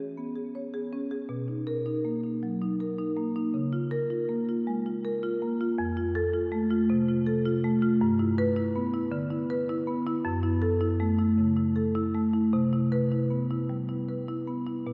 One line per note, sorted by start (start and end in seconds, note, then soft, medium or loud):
0.00 0.13 E3 medium
0.00 0.28 G#4 soft
0.17 0.47 B3 medium
0.36 0.66 G#4 soft
0.55 0.85 C#5 medium
0.74 1.04 G#4 medium
0.93 1.23 C#4 medium
1.11 1.30 G#4 medium
1.29 2.39 B2 medium
1.48 1.79 D#4 soft
1.67 1.97 A#4 medium
1.86 2.16 D#4 medium
2.05 2.35 A#3 medium
2.24 2.54 D#4 soft
2.43 2.73 F#3 medium
2.61 2.92 D#4 soft
2.80 3.10 A#4 medium
2.98 3.29 D#4 medium
3.17 3.47 A#3 medium
3.36 3.55 D#4 medium
3.54 4.63 C#3 medium
3.73 4.03 F4 medium
3.91 4.22 A#4 medium
4.10 4.41 F4 medium
4.29 4.59 A#3 medium
4.49 4.79 F4 medium
4.67 4.97 G#3 medium
4.86 5.16 F4 soft
5.05 5.34 A#4 medium
5.23 5.53 F4 medium
5.42 5.71 A#3 medium
5.61 5.79 F4 medium
5.78 6.86 F2 medium
5.97 6.26 F4 medium
6.15 6.45 A4 medium
6.34 6.63 F4 medium
6.52 6.81 A3 medium
6.71 7.00 F4 medium
6.90 7.19 C3 medium
7.09 7.38 F4 medium
7.27 7.56 A4 medium
7.46 7.75 F4 medium
7.64 7.94 A3 medium
7.82 8.01 F4 medium
8.01 9.09 G2 medium
8.19 8.49 E4 medium
8.38 8.68 B4 medium
8.56 8.86 E4 medium
8.76 9.05 B3 medium
8.94 9.23 E4 medium
9.12 9.42 D3 medium
9.31 9.61 E4 medium
9.50 9.80 B4 medium
9.69 9.99 E4 medium
9.87 10.17 B3 medium
10.06 10.25 E4 medium
10.25 11.34 F#2 medium
10.43 10.73 E4 medium
10.62 10.92 A4 medium
10.81 11.11 E4 medium
11.00 11.30 A3 medium
11.19 11.49 E4 medium
11.38 11.68 C#3 medium
11.57 11.87 E4 soft
11.76 12.06 A4 medium
11.95 12.25 E4 medium
12.15 12.45 A3 medium
12.33 12.53 E4 medium
12.53 13.66 C3 medium
12.73 13.04 E4 medium
12.92 13.23 B4 medium
13.12 13.42 E4 medium
13.30 13.62 B3 medium
13.50 13.81 E4 medium
13.69 14.00 G3 medium
13.89 14.20 E4 soft
14.09 14.40 B4 medium
14.28 14.59 E4 medium
14.47 14.78 B3 medium
14.67 14.86 E4 medium
14.87 14.93 B2 medium